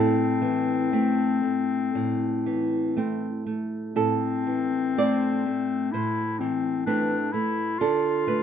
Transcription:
0.00 1.90 A2 medium
0.00 3.46 C4 medium
0.00 2.92 E4 medium
0.00 2.92 A4 medium
0.42 0.92 E3 medium
0.93 1.39 A3 medium
0.93 1.39 C4 medium
1.43 2.25 A3 soft
1.95 3.92 A2 medium
2.46 3.26 E3 soft
2.96 3.42 A3 soft
2.96 3.43 C4 medium
3.47 3.96 A3 soft
3.95 5.89 A2 medium
3.95 5.93 C4 medium
3.95 4.94 A4 medium
4.46 4.98 E3 soft
4.98 5.42 A3 soft
4.98 5.42 C4 soft
4.98 5.89 D5 medium
5.46 6.21 A3 soft
5.92 7.76 A2 soft
5.92 6.41 E4 medium
5.92 6.83 C5 medium
6.39 7.15 E3 soft
6.39 6.85 C4 medium
6.85 7.29 A3 soft
6.85 7.29 C4 soft
6.85 7.34 D4 medium
6.85 7.76 B4 medium
7.32 7.80 A3 soft
7.32 7.80 E4 medium
7.79 8.43 D3 medium
7.79 8.43 F4 medium
7.79 8.25 A4 medium
8.27 8.43 A3 soft
8.27 8.43 B4 medium

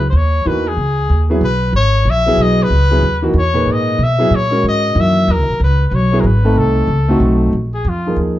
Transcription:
0.00 0.12 C#2 medium
0.10 0.44 D#2 medium
0.10 0.18 C5 medium
0.16 0.49 C#5 medium
0.45 0.76 E2 medium
0.45 0.64 E3 medium
0.45 0.64 A#3 medium
0.45 0.64 D#4 medium
0.45 0.65 F#4 medium
0.45 0.69 B4 medium
0.68 1.31 G#4 medium
0.77 1.09 C#2 medium
1.09 1.40 D#2 medium
1.30 1.41 F#3 medium
1.30 1.41 B3 medium
1.30 1.41 E4 medium
1.30 1.41 G#4 medium
1.41 1.72 B1 medium
1.41 1.73 B4 medium
1.73 2.05 G#1 medium
1.73 2.12 C#5 loud
2.05 2.36 A#1 loud
2.10 2.44 E5 loud
2.26 2.68 F#3 medium
2.26 2.69 B3 medium
2.26 2.69 E4 medium
2.26 2.69 G#4 medium
2.37 2.69 B1 medium
2.42 2.64 D#5 loud
2.63 3.25 B4 loud
2.70 3.01 C#2 medium
2.91 3.02 F#3 medium
2.91 3.02 B3 medium
2.91 3.02 E4 medium
2.91 3.02 G#4 medium
3.01 3.33 D#2 medium
3.22 3.34 E3 medium
3.22 3.34 A#3 medium
3.22 3.34 D#4 medium
3.22 3.34 F#4 medium
3.34 3.66 E2 medium
3.38 3.74 C#5 medium
3.53 3.96 A#2 medium
3.53 3.97 D#4 medium
3.53 3.97 G#4 medium
3.53 3.97 B4 medium
3.66 3.98 G#2 medium
3.72 4.05 D#5 medium
3.98 4.30 B2 medium
4.03 4.37 E5 loud
4.18 4.30 F#3 medium
4.18 4.30 B3 medium
4.18 4.30 E4 medium
4.18 4.31 G#4 medium
4.31 4.62 A#2 medium
4.35 4.66 C#5 loud
4.51 4.93 G#3 medium
4.51 4.93 C#4 medium
4.51 4.94 F#4 medium
4.51 4.94 A#4 medium
4.64 4.95 G#2 medium
4.68 5.02 D#5 loud
4.95 5.27 F#2 loud
4.95 5.44 D#3 soft
4.95 5.44 E3 medium
4.95 5.44 A#3 soft
4.95 5.44 F#4 medium
5.00 5.33 E5 loud
5.28 5.38 E2 loud
5.28 5.62 A#4 medium
5.38 5.48 C#2 medium
5.49 5.59 B1 medium
5.60 5.91 C#2 medium
5.64 5.88 B4 medium
5.88 6.23 B1 medium
5.88 5.97 B4 medium
5.95 6.22 C#5 medium
6.12 6.23 F#3 medium
6.12 6.23 B3 medium
6.12 6.24 E4 medium
6.12 6.24 G#4 medium
6.20 6.55 G#1 medium
6.20 6.28 A#4 medium
6.26 6.60 B4 medium
6.45 6.86 A3 medium
6.45 6.86 C4 medium
6.45 6.86 D#4 medium
6.45 6.87 A4 medium
6.56 6.87 C2 medium
6.56 7.42 A4 medium
6.87 7.19 C#2 medium
7.08 7.50 A3 medium
7.08 7.51 C4 medium
7.08 7.51 D#4 medium
7.08 7.52 F#4 medium
7.20 7.52 B1 medium
7.53 7.84 A#1 medium
7.74 7.90 G#4 medium
7.85 8.16 F2 medium
7.89 8.19 F4 medium
8.07 8.39 F3 medium
8.07 8.39 A#3 medium
8.07 8.39 D#4 medium
8.07 8.39 G#4 medium
8.16 8.39 D#2 medium

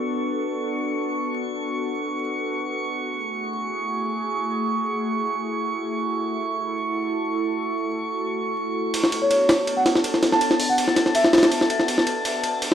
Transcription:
0.00 3.01 B3 medium
0.00 3.01 D4 medium
0.00 8.90 F#4 medium
0.00 3.01 A4 medium
0.00 8.94 C#6 medium
3.05 8.90 A3 medium
3.05 8.90 E4 medium
3.05 5.96 G#4 medium
5.99 8.91 A4 medium
8.94 12.74 B3 medium
8.94 12.74 D4 medium
8.94 12.74 F#4 medium
8.94 12.74 A4 medium
8.94 12.74 A5 medium
8.94 ride medium
9.04 snare soft
9.12 ride medium
9.22 9.27 C#5 medium
9.30 9.37 C#5 medium
9.30 ride medium
9.49 snare medium
9.49 ride medium
9.67 ride medium
9.77 9.99 F#5 medium
9.86 snare soft
9.86 ride medium
9.96 snare soft
10.04 ride medium
10.14 snare soft
10.23 snare soft
10.23 ride medium
10.32 10.54 A5 medium
10.32 snare soft
10.41 ride medium
10.51 snare soft
10.60 open hi-hat medium
10.69 10.91 F#5 medium
10.78 ride medium
10.88 snare soft
10.96 snare soft
10.96 ride medium
11.06 snare soft
11.15 11.43 E5 medium
11.15 ride medium
11.24 snare medium
11.33 snare medium
11.33 ride medium
11.38 snare medium
11.38 ride medium
11.43 snare medium
11.43 ride medium
11.52 ride medium
11.61 snare soft
11.70 ride medium
11.80 snare soft
11.88 ride medium
11.98 snare soft
12.07 ride medium
12.25 ride medium
12.43 ride medium
12.62 ride medium

